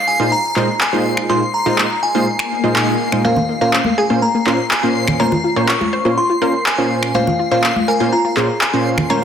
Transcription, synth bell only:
0.08 0.33 G#5 medium
0.32 0.82 A#5 medium
0.81 1.26 G#5 medium
1.30 1.52 C6 loud
1.54 1.99 A#5 medium
2.03 2.75 G#5 loud
2.76 3.26 G#5 medium
3.25 3.59 F5 medium
3.61 3.99 F5 medium
3.98 4.23 G#5 medium
4.22 4.72 A#5 medium
4.71 5.21 G#5 medium
5.20 5.70 A#5 medium
5.69 6.19 C#6 loud
6.18 6.63 C6 medium
6.66 7.16 G#5 medium
7.15 7.50 F5 medium
7.52 7.89 F5 medium
7.88 8.13 G#5 medium
8.13 8.58 A#5 medium
8.61 9.11 G#5 medium
9.10 9.24 A#5 loud

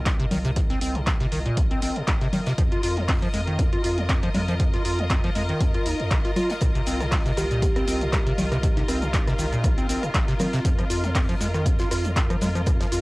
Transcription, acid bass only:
0.06 0.11 G3 medium
0.20 0.26 C3 loud
0.31 0.39 D#3 medium
0.45 0.51 C3 loud
0.56 0.61 C3 medium
0.70 0.80 C4 medium
0.82 0.97 C4 medium
0.95 1.02 C3 medium
1.07 1.11 G3 medium
1.21 1.27 C3 loud
1.32 1.40 D#3 medium
1.46 1.59 A#2 medium
1.57 1.62 C4 medium
1.71 1.80 C4 medium
1.82 1.98 C4 medium
1.96 2.03 C3 medium
2.08 2.12 G3 medium
2.21 2.28 C3 loud
2.33 2.40 D#3 medium
2.47 2.53 C3 loud
2.58 2.63 F3 medium
2.72 2.81 F4 medium
2.83 2.98 F4 medium
2.97 3.03 F3 medium
3.09 3.13 C4 medium
3.22 3.29 F3 loud
3.33 3.41 G#3 medium
3.47 3.60 D#3 medium
3.59 3.63 F4 medium
3.73 3.82 F4 medium
3.84 3.99 F4 medium
3.98 4.04 F3 medium
4.09 4.14 C4 medium
4.23 4.29 F3 loud
4.35 4.42 G#3 medium
4.48 4.55 F3 loud
4.60 4.64 F3 medium
4.74 4.83 F4 medium
4.85 5.00 F4 medium
4.99 5.05 F3 medium
5.10 5.15 C4 medium
5.24 5.30 F3 loud
5.36 5.43 G#3 medium
5.49 5.62 D#3 medium
5.61 5.65 F4 medium
5.75 5.87 F4 medium
5.86 6.01 D#4 medium
6.00 6.13 F2 medium
6.11 6.16 F3 loud
6.25 6.31 F4 medium
6.36 6.52 F4 medium
6.50 6.54 F3 loud
6.62 6.66 C3 medium
6.75 6.82 C3 medium
6.87 7.02 C4 medium
7.01 7.07 C3 medium
7.12 7.17 G3 medium
7.26 7.32 C3 loud
7.37 7.45 D#3 medium
7.51 7.64 A#2 medium
7.63 7.67 C4 medium
7.76 7.86 C4 medium
7.88 8.03 C4 medium
8.01 8.08 C3 medium
8.13 8.17 G3 medium
8.27 8.33 C3 loud
8.38 8.46 D#3 medium
8.52 8.58 C3 loud
8.63 8.68 C3 medium
8.77 8.83 C3 medium
8.88 9.04 C4 medium
9.02 9.08 C3 medium
9.14 9.18 G3 medium
9.27 9.34 C3 loud
9.39 9.46 D#3 medium
9.52 9.65 A#2 medium
9.64 9.68 C4 medium
9.78 9.87 C4 medium
9.89 10.04 C4 medium
10.03 10.09 C3 medium
10.14 10.19 G3 medium
10.28 10.34 C3 loud
10.40 10.47 D#3 medium
10.53 10.60 C3 loud
10.65 10.69 F3 medium
10.79 10.85 F3 medium
10.90 11.05 F4 medium
11.04 11.10 F3 medium
11.15 11.20 C4 medium
11.29 11.35 F3 loud
11.41 11.48 G#3 medium
11.54 11.67 D#3 medium
11.66 11.70 F4 medium
11.80 11.89 F4 medium
11.91 12.06 F4 medium
12.05 12.11 F3 medium
12.16 12.21 C4 medium
12.30 12.36 F3 loud
12.42 12.49 G#3 medium
12.55 12.61 F3 loud
12.67 12.71 F3 medium
12.81 12.87 F3 medium
12.92 13.01 F4 medium

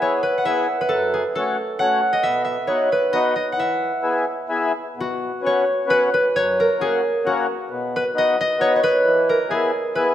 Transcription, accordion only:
0.00 0.21 B3 medium
0.00 0.22 E4 soft
0.00 0.21 G#4 medium
0.45 0.67 B3 medium
0.45 0.67 E4 medium
0.45 0.67 G#4 medium
0.90 1.24 F#2 medium
1.35 1.56 A3 medium
1.35 1.57 C#4 medium
1.35 1.57 F#4 medium
1.80 2.01 A3 medium
1.80 2.01 C#4 medium
1.80 2.02 F#4 medium
2.24 2.58 B2 medium
2.67 2.89 B3 medium
2.67 2.89 D#4 medium
2.67 2.90 F#4 medium
3.12 3.34 B3 medium
3.12 3.34 D#4 medium
3.12 3.35 F#4 medium
3.57 3.92 E3 medium
4.03 4.25 B3 medium
4.03 4.25 E4 medium
4.03 4.25 G#4 medium
4.49 4.72 B3 medium
4.49 4.72 E4 medium
4.49 4.73 G#4 medium
4.97 5.32 B2 medium
5.42 5.64 B3 medium
5.42 5.64 C#4 medium
5.42 5.65 F#4 medium
5.87 6.09 B3 medium
5.87 6.10 C#4 medium
5.87 6.10 F#4 medium
6.34 6.69 F#2 medium
6.79 7.01 A#3 medium
6.79 7.01 C#4 medium
6.79 7.01 F#4 medium
7.24 7.46 A#3 medium
7.24 7.46 C#4 medium
7.24 7.47 F#4 medium
7.70 8.04 B2 medium
8.14 8.36 B3 medium
8.14 8.36 D#4 medium
8.14 8.37 F#4 medium
8.59 8.80 B3 medium
8.59 8.81 D#4 medium
8.59 8.81 F#4 medium
9.05 9.39 E3 medium
9.49 9.71 B3 medium
9.49 9.71 E4 medium
9.49 9.71 G#4 medium
9.96 10.14 B3 medium
9.96 10.14 E4 medium
9.96 10.14 G#4 medium

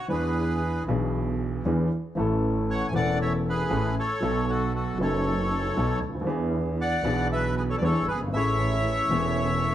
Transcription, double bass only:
0.10 0.83 E2 medium
0.88 1.61 B1 medium
1.64 1.86 E2 loud
2.17 2.90 A1 loud
2.93 3.67 E1 medium
3.70 3.92 A1 loud
4.21 4.95 B1 medium
4.98 5.72 F#1 medium
5.77 5.98 B1 loud
6.02 6.26 D2 medium
6.27 7.00 E2 medium
7.04 7.77 B1 medium
7.81 8.03 E2 loud
8.07 8.32 G1 medium
8.32 9.06 A1 loud
9.09 9.75 E1 medium

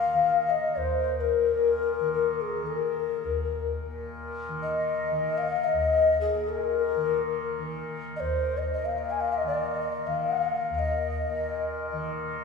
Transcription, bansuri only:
0.00 0.51 F5 medium
0.50 0.78 D#5 medium
0.77 1.22 C5 medium
1.21 2.13 A#4 medium
2.13 2.43 A#4 medium
2.41 2.68 G#4 medium
2.67 3.70 A#4 medium
4.62 5.39 D#5 medium
5.38 5.66 F5 medium
5.64 6.20 D#5 medium
6.21 6.50 G#4 medium
6.48 7.68 A#4 medium
8.16 8.59 C5 medium
8.16 8.21 D#5 medium
8.58 8.73 D#5 medium
8.73 8.87 D#5 medium
8.85 9.00 F5 medium
8.98 9.12 D#5 medium
9.10 9.22 G#5 medium
9.21 9.35 F5 medium
9.33 9.46 D#5 medium
9.47 9.58 D5 medium
9.58 10.08 D#5 medium
10.07 10.75 F5 medium
10.75 12.07 D#5 medium
10.75 10.80 F5 medium

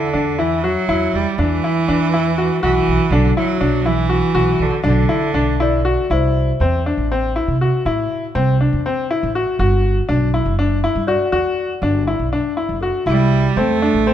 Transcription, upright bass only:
0.14 0.74 E2 medium
0.88 1.09 E2 medium
1.13 1.23 E2 medium
1.38 1.58 E2 loud
1.88 2.48 E2 medium
2.63 2.83 B1 medium
2.88 2.97 B1 medium
3.11 3.31 B1 loud
3.61 4.20 B1 medium
4.34 4.54 B1 medium
4.59 4.69 B1 medium
4.84 5.04 B1 loud
5.34 5.95 B1 medium
6.10 6.51 C2 medium
6.60 6.91 E2 medium
6.97 7.38 A1 medium
7.48 7.68 C3 medium
7.85 8.06 A2 medium
8.35 8.65 C2 loud
8.73 8.93 E2 medium
9.23 9.43 A1 medium
9.59 9.99 G1 loud
10.09 10.39 B1 loud
10.45 10.85 F#1 medium
10.95 11.15 G2 medium
11.32 11.52 E2 medium
11.82 12.12 G1 loud
12.19 12.39 B1 medium
12.69 12.89 F#1 medium
13.06 13.46 C2 medium
13.56 13.86 E2 medium
13.94 14.14 A1 medium

